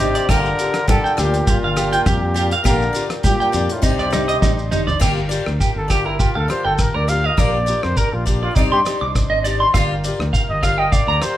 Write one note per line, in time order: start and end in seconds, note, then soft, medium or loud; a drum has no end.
0.00 0.16 G#1 medium
0.00 0.33 C3 medium
0.00 0.28 D4 medium
0.00 0.28 D#4 medium
0.00 0.31 G4 medium
0.00 0.19 G4 soft
0.00 0.29 C5 medium
0.00 0.18 D5 soft
0.00 muted steel-string acoustic guitar stroke soft
0.00 low conga medium
0.00 shekere medium
0.15 0.23 D5 medium
0.15 closed hi-hat medium
0.15 shekere soft
0.29 0.52 G1 loud
0.29 0.89 D3 medium
0.29 0.48 A#3 medium
0.29 2.63 F4 medium
0.29 0.49 F4 medium
0.29 0.38 G4 medium
0.29 3.80 G4 medium
0.29 0.49 G4 medium
0.29 3.80 A#4 medium
0.29 0.89 A#4 loud
0.29 0.49 D5 medium
0.29 kick medium
0.29 cross-stick medium
0.29 closed hi-hat medium
0.29 muted conga soft
0.29 shekere medium
0.46 shekere soft
0.59 0.79 F4 soft
0.59 0.78 G4 soft
0.59 closed hi-hat medium
0.59 shekere medium
0.74 cross-stick medium
0.74 closed hi-hat medium
0.74 shekere soft
0.88 1.22 D3 medium
0.88 0.98 G4 medium
0.88 1.21 A4 loud
0.88 kick medium
0.88 closed hi-hat soft
0.88 high conga medium
0.88 shekere medium
1.04 1.12 G5 medium
1.04 shekere soft
1.17 1.41 D2 medium
1.17 1.49 A#2 medium
1.17 1.38 F4 soft
1.17 1.37 G4 soft
1.17 1.51 G4 medium
1.17 1.36 D5 medium
1.17 cross-stick medium
1.17 closed hi-hat medium
1.17 muted conga soft
1.17 shekere medium
1.34 closed hi-hat soft
1.34 shekere soft
1.47 2.09 A#2 medium
1.47 2.11 F4 medium
1.47 1.57 G4 medium
1.47 kick medium
1.47 closed hi-hat medium
1.47 muted conga soft
1.47 high conga medium
1.47 shekere medium
1.63 1.97 G1 medium
1.63 1.72 F5 medium
1.76 1.97 F4 soft
1.76 1.87 G4 medium
1.76 1.96 G4 soft
1.76 1.95 D5 soft
1.76 cross-stick medium
1.76 closed hi-hat soft
1.76 muted conga soft
1.76 shekere medium
1.93 2.01 G5 medium
1.93 closed hi-hat soft
1.93 shekere soft
2.06 2.52 F2 medium
2.06 2.51 A#2 medium
2.06 2.16 G4 medium
2.06 2.50 G4 medium
2.06 kick medium
2.06 cross-stick medium
2.06 closed hi-hat soft
2.06 high conga medium
2.06 shekere loud
2.34 2.55 F4 soft
2.34 2.45 G4 medium
2.34 2.55 G4 soft
2.34 2.54 D5 soft
2.34 closed hi-hat medium
2.34 shekere medium
2.51 2.60 F5 medium
2.51 closed hi-hat medium
2.51 shekere soft
2.64 2.88 A#1 loud
2.64 3.09 D3 medium
2.64 2.83 A#3 medium
2.64 5.00 D4 medium
2.64 2.84 F4 medium
2.64 2.75 G4 medium
2.64 2.84 G4 medium
2.64 3.08 A#4 loud
2.64 2.84 D5 medium
2.64 kick medium
2.64 cross-stick medium
2.64 closed hi-hat soft
2.64 shekere loud
2.82 shekere soft
2.93 3.14 F4 soft
2.93 3.14 G4 soft
2.93 3.12 D5 medium
2.93 closed hi-hat soft
2.93 shekere medium
3.10 cross-stick medium
3.10 closed hi-hat soft
3.10 shekere soft
3.23 3.73 A#2 medium
3.23 3.33 G4 medium
3.23 3.73 G4 medium
3.23 kick medium
3.23 closed hi-hat soft
3.23 high conga medium
3.23 shekere loud
3.40 3.48 G5 medium
3.40 shekere soft
3.52 3.66 F2 medium
3.52 3.73 F4 soft
3.52 3.73 G4 soft
3.52 3.72 D5 soft
3.52 closed hi-hat soft
3.52 muted conga soft
3.52 shekere medium
3.69 3.85 A2 medium
3.69 3.85 F4 medium
3.69 closed hi-hat soft
3.69 shekere soft
3.82 3.96 C2 medium
3.82 4.01 C4 medium
3.82 4.01 D#4 medium
3.82 5.00 D#4 medium
3.82 3.93 D#4 medium
3.82 4.02 G4 medium
3.82 4.69 G4 medium
3.82 5.00 C5 medium
3.82 4.02 D5 medium
3.82 kick medium
3.82 closed hi-hat soft
3.82 muted conga soft
3.82 shekere medium
3.86 4.70 C3 medium
3.99 4.33 C2 medium
3.99 4.07 D5 medium
3.99 shekere soft
4.10 4.22 D#4 medium
4.10 4.32 D#4 soft
4.10 4.31 G4 soft
4.10 4.30 D5 medium
4.10 cross-stick medium
4.10 closed hi-hat soft
4.10 muted conga soft
4.10 high conga medium
4.10 low conga medium
4.10 shekere medium
4.28 4.36 D#5 medium
4.28 closed hi-hat soft
4.28 shekere soft
4.42 4.69 A1 medium
4.42 4.51 D#4 medium
4.42 kick medium
4.42 snare medium
4.42 high conga medium
4.42 shekere medium
4.59 shekere soft
4.71 4.99 G1 medium
4.71 4.81 D#4 medium
4.71 4.91 D#4 soft
4.71 4.91 G4 soft
4.71 mid tom medium
4.71 low conga medium
4.71 shekere medium
4.87 4.95 D5 medium
4.87 floor tom medium
4.87 shekere soft
4.99 5.37 G1 loud
4.99 5.19 A#3 medium
4.99 5.19 F4 medium
4.99 7.35 F4 medium
4.99 8.52 G4 medium
4.99 5.20 G4 medium
4.99 5.11 G4 medium
4.99 8.52 A#4 medium
4.99 5.20 D5 medium
4.99 kick medium
4.99 cross-stick medium
4.99 crash medium
4.99 shekere medium
5.29 5.50 F4 soft
5.29 5.49 G4 medium
5.29 5.49 D5 medium
5.29 closed hi-hat soft
5.29 shekere medium
5.46 5.58 D2 medium
5.46 cross-stick medium
5.60 5.70 G4 medium
5.60 kick medium
5.60 shekere medium
5.76 6.22 G1 medium
5.76 5.93 A4 medium
5.88 6.09 F4 soft
5.88 6.09 G4 soft
5.88 5.99 G4 medium
5.88 6.07 G4 medium
5.88 6.08 D5 soft
5.88 kick medium
5.88 cross-stick medium
5.88 closed hi-hat soft
5.88 shekere medium
6.05 6.22 E4 medium
6.05 6.14 A#4 medium
6.19 6.37 F4 medium
6.19 6.29 G4 medium
6.19 kick medium
6.19 shekere medium
6.35 6.46 D2 medium
6.35 6.51 A4 medium
6.35 6.43 F5 medium
6.48 6.69 F4 soft
6.48 6.68 G4 soft
6.48 6.67 C5 medium
6.48 6.67 D5 soft
6.48 cross-stick medium
6.48 closed hi-hat soft
6.65 6.88 G1 medium
6.65 6.82 A4 medium
6.65 6.73 G5 medium
6.78 6.97 A#4 medium
6.78 kick medium
6.78 cross-stick medium
6.78 shekere medium
6.94 7.28 D2 medium
6.94 7.03 A#4 medium
6.94 7.10 D5 medium
7.08 7.28 F4 soft
7.08 7.28 G4 soft
7.08 7.27 D5 soft
7.08 7.27 F5 loud
7.08 muted clean electric guitar stroke medium
7.08 closed hi-hat soft
7.08 shekere medium
7.24 7.41 D#5 medium
7.24 7.32 F5 medium
7.37 7.73 A#1 loud
7.37 7.56 A#3 medium
7.37 8.55 D4 medium
7.37 7.57 F4 medium
7.37 7.57 G4 medium
7.37 7.47 A#4 medium
7.37 7.84 D5 medium
7.37 7.57 D5 medium
7.37 kick medium
7.37 cross-stick medium
7.37 shekere medium
7.66 7.87 F4 soft
7.66 7.86 G4 soft
7.66 7.85 D5 medium
7.66 closed hi-hat soft
7.66 shekere medium
7.83 7.95 F2 medium
7.83 7.99 C5 medium
7.83 cross-stick medium
7.97 8.06 A#4 medium
7.97 8.15 A#4 medium
7.97 kick medium
7.97 shekere medium
8.13 8.47 A#1 medium
8.13 8.27 F4 medium
8.26 8.43 D4 soft
8.26 8.46 F4 soft
8.26 8.46 G4 soft
8.26 8.45 D5 medium
8.26 kick medium
8.26 closed hi-hat soft
8.26 shekere medium
8.42 8.57 F4 medium
8.42 8.51 D5 medium
8.55 8.68 C2 loud
8.55 8.75 C4 medium
8.55 9.74 D4 medium
8.55 8.72 D#4 medium
8.55 9.73 D#4 medium
8.55 8.75 D#4 medium
8.55 8.76 G4 medium
8.55 9.73 C5 medium
8.55 8.66 D5 medium
8.55 8.76 D5 medium
8.55 kick medium
8.55 shekere medium
8.71 8.82 G2 medium
8.71 8.80 G4 medium
8.71 8.80 C6 medium
8.85 9.06 D#4 soft
8.85 9.05 G4 soft
8.85 9.04 D5 soft
8.85 cross-stick medium
8.85 closed hi-hat soft
8.85 shekere medium
9.01 9.24 C2 medium
9.01 9.09 D6 medium
9.15 kick medium
9.15 cross-stick medium
9.15 shekere medium
9.30 9.64 G#1 medium
9.30 9.38 D#5 medium
9.44 9.65 D#4 soft
9.44 9.64 G4 medium
9.44 9.54 D5 medium
9.44 9.63 D5 medium
9.44 closed hi-hat soft
9.44 shekere medium
9.60 9.68 C6 medium
9.74 10.09 G1 loud
9.74 9.93 A#3 medium
9.74 11.37 F4 medium
9.74 9.93 F4 medium
9.74 11.37 G4 medium
9.74 9.94 G4 medium
9.74 11.37 A#4 medium
9.74 9.94 D5 medium
9.74 9.83 F5 medium
9.74 kick medium
9.74 cross-stick medium
9.74 shekere medium
10.04 10.24 F4 soft
10.04 10.24 G4 medium
10.04 10.23 D5 medium
10.04 closed hi-hat soft
10.04 shekere medium
10.19 10.30 D2 medium
10.19 cross-stick medium
10.33 10.42 F5 medium
10.33 kick medium
10.33 shekere medium
10.49 10.95 G1 medium
10.49 10.65 D#5 medium
10.63 10.83 F4 soft
10.63 10.82 G4 soft
10.63 10.81 D5 medium
10.63 10.72 F5 medium
10.63 10.81 F5 loud
10.63 kick medium
10.63 cross-stick medium
10.63 closed hi-hat soft
10.63 shekere medium
10.78 10.94 D#5 medium
10.78 10.86 G5 medium
10.92 11.24 D5 medium
10.92 11.01 F5 medium
10.92 kick medium
10.92 shekere medium
11.07 11.18 D2 medium
11.07 11.16 A#5 medium
11.22 11.37 F4 soft
11.22 11.37 G4 soft
11.22 11.37 C5 medium
11.22 11.37 D5 soft
11.22 cross-stick medium
11.22 closed hi-hat soft
11.22 shekere medium